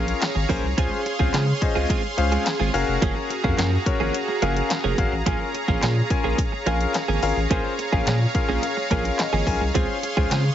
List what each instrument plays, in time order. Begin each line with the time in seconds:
Already playing: sub bass A#1, grand piano C#4 F4 G#4 A#4 F5, supersaw synth G#4 C#5 F5 A#5
0.07 muted clean electric guitar stroke, closed hi-hat
0.22 snare, clap, closed hi-hat
0.35 sub bass G#1, muted clean electric guitar stroke
0.49 sub bass B1, clean electric guitar F3 A#3 C#4 G#4, grand piano C#4 F4 G#4 A#4 C5, kick, open hi-hat
0.63 sub bass C2, muted clean electric guitar stroke
0.77 sub bass C#2, clean electric guitar G#3 C4 F4 G#4, grand piano C#4 F4 G#4 C5 F5, supersaw synth F5 C6, kick, closed hi-hat
0.91 muted clean electric guitar stroke
1.05 muted clean electric guitar stroke, closed hi-hat
1.19 sub bass C#2, clean electric guitar G#3 C4 F4 G#4, grand piano C#4 F4 G#4 C5 F5, kick
1.33 sub bass C#3, clean electric guitar G#3 C4 F4 G#4, snare, clap, closed hi-hat
1.47 muted clean electric guitar stroke
1.61 grand piano C#4 F4 G#4 C5 D#5, muted clean electric guitar stroke, kick, closed hi-hat
1.75 sub bass C#2, clean electric guitar G#3 C4 F4 G#4
1.89 clean electric guitar G#3 C4 F4 G#4, kick, closed hi-hat
2.04 muted clean electric guitar stroke
2.17 sub bass C#2, grand piano C#4 F4 G#4 C5 F5, muted clean electric guitar stroke, closed hi-hat
2.32 clean electric guitar G#3 C4 F4 G#4, closed hi-hat
2.46 muted clean electric guitar stroke, snare, clap, closed hi-hat
2.59 sub bass G#1, clean electric guitar G#3 C4 F4 G#4
2.74 sub bass F#1, grand piano C#4 F#4 G#4 A#4 F5, supersaw synth F#4 F5 A#5, muted clean electric guitar stroke, open hi-hat
2.87 sub bass F1, muted clean electric guitar stroke
3.02 sub bass F#1, clean electric guitar F3 A#3 C#4 G#4, kick, closed hi-hat
3.16 muted clean electric guitar stroke
3.30 muted clean electric guitar stroke, closed hi-hat
3.44 sub bass F2, clean electric guitar F3 A#3 C#4 G#4, grand piano C#4 F#4 G#4 A#4 F5, kick
3.58 sub bass F#2, clean electric guitar F3 A#3 C#4 G#4, snare, clap, closed hi-hat
3.72 muted clean electric guitar stroke
3.86 grand piano C#4 F#4 G#4 A#4 C#5, muted clean electric guitar stroke, kick, closed hi-hat
4.00 sub bass G#1, clean electric guitar F3 A#3 C#4 G#4
4.14 closed hi-hat
4.28 muted clean electric guitar stroke
4.42 sub bass F#1, clean electric guitar F3 A#3 C#4 G#4, grand piano C#4 F#4 G#4 A#4 F5, closed hi-hat
4.56 muted clean electric guitar stroke, closed hi-hat
4.70 muted clean electric guitar stroke, snare, clap, closed hi-hat
4.84 sub bass F1, clean electric guitar F3 A#3 C#4 G#4
4.98 sub bass G#1, grand piano C#4 F#4 G#4 A#4 F5, muted clean electric guitar stroke, kick, closed hi-hat
5.12 sub bass A1, muted clean electric guitar stroke
5.26 sub bass A#1, clean electric guitar F3 A#3 C#4 G#4, grand piano C#4 F4 G#4 A#4 F5, supersaw synth C#5, kick, closed hi-hat
5.40 muted clean electric guitar stroke
5.54 muted clean electric guitar stroke, closed hi-hat
5.68 sub bass A#1, clean electric guitar F3 A#3 C#4 G#4, grand piano C#4 F4 G#4 A#4 F5, kick
5.82 sub bass A#2, clean electric guitar F3 A#3 C#4 G#4, snare, clap, closed hi-hat
5.96 muted clean electric guitar stroke
6.10 grand piano C#4 F4 G#4 A#4 G#5, muted clean electric guitar stroke, kick, closed hi-hat
6.24 sub bass A#1, clean electric guitar F3 A#3 C#4 G#4
6.38 kick, closed hi-hat
6.52 muted clean electric guitar stroke
6.66 sub bass A#1, clean electric guitar F3 A#3 C#4 G#4, grand piano C#4 F4 G#4 A#4 F5, closed hi-hat
6.80 muted clean electric guitar stroke, closed hi-hat
6.94 muted clean electric guitar stroke, snare, clap, closed hi-hat
7.08 sub bass G#1, clean electric guitar F3 A#3 C#4 G#4
7.22 sub bass G#1, grand piano C#4 F4 G#4 A#4 F5, open hi-hat
7.36 sub bass A1, muted clean electric guitar stroke
7.50 sub bass A#1, clean electric guitar F3 A#3 C#4 G#4, grand piano C#4 F4 G#4 A#4 C5, kick, closed hi-hat
7.64 muted clean electric guitar stroke
7.79 muted clean electric guitar stroke, closed hi-hat
7.92 sub bass A#1, clean electric guitar F3 A#3 C#4 G#4, grand piano C#4 F4 G#4 A#4 F5, kick
8.07 sub bass A#2, clean electric guitar F3 A#3 C#4 G#4, snare, clap, closed hi-hat
8.21 muted clean electric guitar stroke
8.34 grand piano C#4 F4 G#4 A#4 F5 G#5, muted clean electric guitar stroke, kick, closed hi-hat
8.49 sub bass A#1, clean electric guitar F3 A#3 C#4 G#4
8.63 grand piano F5, closed hi-hat
8.77 muted clean electric guitar stroke
8.90 sub bass A#1, clean electric guitar F3 A#3 C#4 G#4, grand piano C#4 F4 G#4 A#4 F5, kick, closed hi-hat
9.05 muted clean electric guitar stroke, closed hi-hat
9.19 grand piano D#5, muted clean electric guitar stroke, snare, clap, closed hi-hat
9.33 sub bass G#1, clean electric guitar F3 A#3 C#4 G#4
9.47 sub bass B1, grand piano C#4 F4 G#4 A#4 G#5, muted clean electric guitar stroke, kick, open hi-hat
9.61 sub bass C2, muted clean electric guitar stroke
9.74 sub bass C#2, clean electric guitar G#3 C4 F4 G#4, grand piano C#4 F4 G#4 C5 F5, supersaw synth G#4 C6, kick, closed hi-hat
9.89 muted clean electric guitar stroke
10.03 muted clean electric guitar stroke, closed hi-hat
10.17 sub bass C#2, clean electric guitar G#3 C4 F4 G#4, grand piano C#4 F4 G#4 C5 F5, kick
10.31 sub bass C#3, clean electric guitar G#3 C4 F4 G#4, snare, clap, closed hi-hat
10.45 muted clean electric guitar stroke